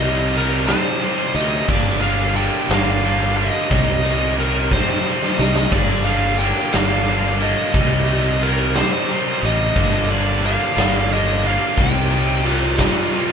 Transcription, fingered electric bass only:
0.00 0.72 C2 medium
1.35 1.61 D2 medium
1.69 2.48 G1 loud
2.69 3.49 G1 medium
3.72 4.77 C2 loud
5.39 5.65 C2 medium
5.72 6.52 G1 loud
6.74 7.53 G1 medium
7.74 8.80 C2 loud
9.43 9.69 A1 medium
9.76 10.56 G1 loud
10.77 11.57 G1 medium
11.78 12.84 C2 loud

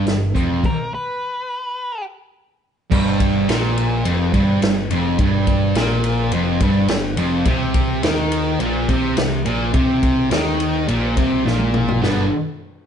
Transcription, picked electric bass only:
0.06 0.33 G1 medium
0.35 0.62 F1 medium
2.92 3.44 G1 loud
3.48 4.01 A#1 loud
4.05 4.31 F1 loud
4.34 4.60 G1 loud
4.62 4.88 G1 medium
4.90 5.16 F1 loud
5.19 5.72 G1 medium
5.75 6.28 A#1 medium
6.31 6.58 F1 loud
6.61 6.87 G1 medium
6.89 7.16 G1 medium
7.17 7.44 F1 loud
7.46 7.99 C2 loud
8.02 8.56 D#2 medium
8.60 8.86 A#1 medium
8.88 9.15 C2 medium
9.17 9.43 C2 medium
9.46 9.72 A#1 loud
9.74 10.27 C2 medium
10.31 10.84 D#2 medium
10.88 11.15 A#1 medium
11.17 11.43 C2 loud
11.46 11.99 A#1 medium
12.03 12.29 G1 medium

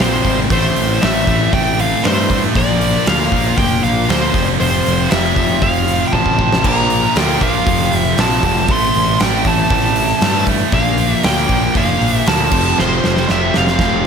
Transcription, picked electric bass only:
0.00 0.20 A#1 loud
0.25 0.45 G#1 loud
0.50 0.71 A1 loud
0.77 0.97 A1 medium
1.03 1.23 A1 medium
1.27 1.47 A1 loud
1.53 1.93 A1 medium
2.06 2.45 G2 loud
2.56 2.96 A#1 medium
3.07 3.27 D2 loud
3.32 3.52 A#1 medium
3.58 3.78 F1 medium
3.84 4.04 A#1 medium
4.09 4.29 D2 loud
4.34 4.55 F1 loud
4.60 4.80 F1 medium
4.87 5.06 F1 medium
5.12 5.32 F1 medium
5.36 5.57 F1 medium
5.62 6.03 F1 medium
6.13 6.64 A1 loud
6.64 7.05 A#1 medium
7.16 7.36 D2 medium
7.42 7.62 A#1 medium
7.67 7.87 F1 medium
7.93 8.13 F1 medium
8.18 8.38 A#1 medium
8.43 8.69 F1 loud
8.69 8.89 A1 medium
8.96 9.16 A1 medium
9.21 9.41 A1 medium
9.45 9.65 A1 loud
9.71 10.11 A1 medium
10.22 10.62 G2 loud
10.73 11.13 A#1 loud
11.25 11.45 D2 medium
11.49 11.70 A#1 medium
11.75 11.95 F1 medium
12.01 12.21 A#1 medium
12.27 12.47 D2 medium
12.52 12.72 F1 medium
12.79 12.99 F1 loud
13.05 13.24 F1 medium
13.30 13.49 F1 loud
13.56 13.75 F1 medium
13.79 14.07 F1 medium

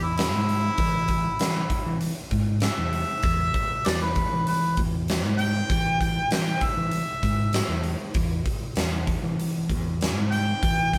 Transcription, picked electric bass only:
0.00 0.32 E2 medium
0.32 0.70 G#2 medium
0.78 1.28 E3 medium
1.40 1.65 E3 medium
1.87 2.11 E3 loud
2.31 2.68 G#2 loud
2.79 3.03 E2 medium
3.24 3.48 E2 loud
3.87 4.23 E2 medium
4.33 4.79 E3 medium
4.77 5.25 E2 medium
5.25 5.61 G#2 medium
5.70 6.19 E3 medium
6.31 6.56 E3 medium
6.77 7.02 E3 medium
7.23 7.60 G#2 medium
7.69 7.94 E2 medium
8.15 8.40 E2 loud
8.77 9.14 E2 medium
9.23 9.71 E3 medium
9.70 10.15 E2 medium
10.15 10.53 G#2 medium
10.63 10.98 E3 medium

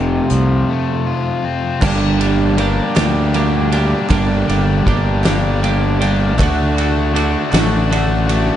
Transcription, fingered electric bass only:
0.00 0.19 F1 medium
0.31 0.63 C2 medium
1.82 2.79 G1 loud
2.97 3.94 D2 medium
4.11 4.43 G1 loud
4.49 4.81 G1 medium
4.87 6.39 G1 medium
6.39 7.35 D2 loud
7.53 8.50 A1 loud

